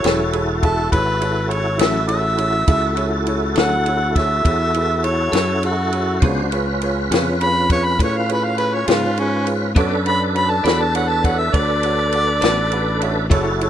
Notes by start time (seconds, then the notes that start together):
Already playing: E4 F#4 A4 C#5
0.04 E1 F#3 C#4 E4 G#4 A4 C#5, snare, ride
0.33 E4 G#4 A4 C#5, ride
0.63 E4 G#4 A4 E5, kick, ride
0.92 G#1 E4 G#4 A4 B4 C#5, kick, ride
1.20 E4 G#4 A4 C#5, ride
1.50 E4 G#4 A4 C#5, ride
1.77 A1 E4 G#4 A4 C#5 E5, ride
1.81 F#3 C#4 E4, snare
2.08 E4 G#4 A4 C#5 E5, ride
2.37 E4 G#4 A4 C#5, ride
2.67 C#2 E4 F#4 G#4 A4 E5, kick, ride
2.96 E4 G#4 A4 C#5, ride
3.26 E4 G#4 A4 C#5, ride
3.56 D2 F#3 C#4 E4 G#4 A4 C#5 F#5, snare, ride
3.86 E4 G#4 A4 C#5, ride
4.16 E4 G#4 A4 C#5 E5, kick, snare, ride
4.44 E2 E4 G#4 A4 C#5, kick, ride
4.74 E4 G#4 A4 B4, ride
5.04 E4 G#4 A4 C#5, ride
5.32 F#2 F#3 C#4 E4 G#4 A4, snare, ride
5.37 A4 C#5
5.63 E4 F#4 G#4 A4 C#5, ride
5.93 E4 G#4 A4 C#5, ride
6.20 C#2 C#3 B3 D4 F4 F#4 G#4 B4 C5, kick, ride
6.24 G#4 C#5
6.50 C#4 F4 G#4 B4, ride
6.54 C#5
6.82 F4 G#4 B4 C#5, ride
7.11 F2 C#3 B3 F4 G#4 B4 C#5, snare, ride
7.41 F4 G#4 B4 C#5 B5, ride
7.70 F4 G#4 B4 C#5, kick, snare, ride
7.85 B5
7.99 A2 F4 G#4 B4 C#5, kick, ride
8.04 C#5
8.17 F5
8.28 F4 G#4 B4 C#5, ride
8.32 B4
8.44 F5
8.58 F4 G#4 B4 C#5, ride
8.74 C#5
8.87 G#2 C#3 B3 F4 G#4 B4 C#5, snare, ride
9.17 C#4 F4 G#4 B4 C#5, ride
9.46 F4 G#4 B4 C#5, ride
9.75 F#2 B3 D4 F#4 A4 B4 C#5 D5, kick, ride
10.05 D4 F#4 A4 C#5 B5, ride
10.34 D4 F#4 A4 C#5 B5, ride
10.50 A5
10.64 E2 B3 D4 F#4 A4 C#5 D5 B5, snare, ride
10.82 A5
10.95 D4 F#4 A4 C#5 F#5, ride
11.09 A5
11.24 D4 F#4 A4 C#5 F#5, kick, ride
11.39 E5
11.54 D2 D4 F#4 A4 C#5 D5, kick, ride
11.83 D4 F#4 A4 C#5, ride
12.12 D4 F#4 A4 D5, ride
12.41 A1 B3 D4 F#4 A4 D5, snare, ride
12.46 B4
12.72 D4 F#4 A4 B4 B5, ride
13.02 D4 F#4 A4 C#5 E5, ride
13.30 F#1 F#3 E4 F#4 G#4 A4 C#5, kick, ride
13.61 E4 G#4 A4 C#5, ride